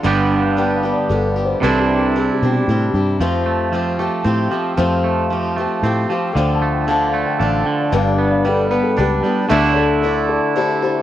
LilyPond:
<<
  \new Staff \with { instrumentName = "Grand piano" } { \time 3/4 \key f \lydian \tempo 4 = 114 r2. | r2. | r2. | r2. |
<a' d'' f''>8 r8 <a' d'' f''>8 r8 <a' d'' f''>8 r8 | <b' d'' g''>8 r8 <b' d'' g''>8 r8 <b' d'' g''>8 r8 | <a' d'' e''>8 r8 <a' d'' e''>8 r8 <a' d'' e''>8 r8 | }
  \new Staff \with { instrumentName = "Upright piano" } { \time 3/4 \key f \lydian \tuplet 3/2 { g''4 f''8 g''8 f''8 d''8 a'8 d''8 c''8 } | \tuplet 3/2 { a'8 g'8 a'8 gis'8 g'8 <fis' g'>8~ } <fis' g'>8 r8 | r2. | r2. |
\tuplet 3/2 { g''8 a''8 g''8 a''8 f''8 g''8 f''8 g''8 d''8 } | \tuplet 3/2 { f''8 d''8 f''8 a'8 d''8 a'8 } g'8 r8 | r8 <a' cis'' d''>8 <a' d''>8 <a' d''>8 <g' c''>8 <g' c''>8 | }
  \new Staff \with { instrumentName = "Steel-string acoustic guitar" } { \time 3/4 \key f \lydian <g, d g b d' g'>4 <g b d' g'>8 <g b d' g'>8 <g b d' g'>8 <g b d' g'>8 | <c e g c' d' g'>4 <g c' d' g'>8 <g c' d' g'>8 <g c' d' g'>8 <g c' d' g'>8 | <f a c' f' g'>4 <a c' f' g'>8 <c' f' g'>8 <a c' f' g'>8 <c' f' g'>8 | <f a c' f' g'>4 <a c' f' g'>8 <c' f' g'>8 <a c' f' g'>8 <c' f' g'>8 |
<d f d' f' a'>4 <f d' f' a'>4 <f d' f' a'>4 | <g, d g b d' b'>4 <g b d' b'>8 <g b d' b'>8 <g b d' b'>8 <g b d' b'>8 | <d a d' e' a'>4 <a d' e' a'>4 <a d' e' a'>8 <d' e' a'>8 | }
  \new Staff \with { instrumentName = "Clean electric guitar" } { \time 3/4 \key f \lydian <g, d g b d' g'>2. | <c g c' d' e'>2. | f8 a8 f8 a8 c'8 f8 | f8 a8 f8 a8 c'8 f8 |
d8 a8 d8 a8 d'8 d8 | g,8 b8 g8 b8 d'8 g8 | <d a d' e'>2. | }
  \new Staff \with { instrumentName = "Fingered electric bass" } { \clef bass \time 3/4 \key f \lydian g,,2 g,,4 | c,4. b,8 a,8 g,8 | f,2 a,8 r8 | f,2 a,8 r8 |
d,2 a,,8 r8 | g,,2 cis,8 r8 | d,2 r4 | }
>>